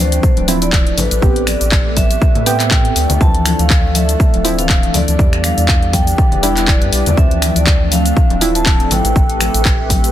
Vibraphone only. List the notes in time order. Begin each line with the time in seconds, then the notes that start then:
0.00 C5
0.62 D5
0.98 B4
1.47 D5
1.97 E5
2.46 E5
2.71 G5
3.21 A5
3.59 F5
3.95 E5
4.59 F5
4.94 D5
5.44 F5
5.93 G5
6.43 G5
6.68 D5
7.18 E5
7.56 D5
7.92 F5
8.55 A5
8.91 G5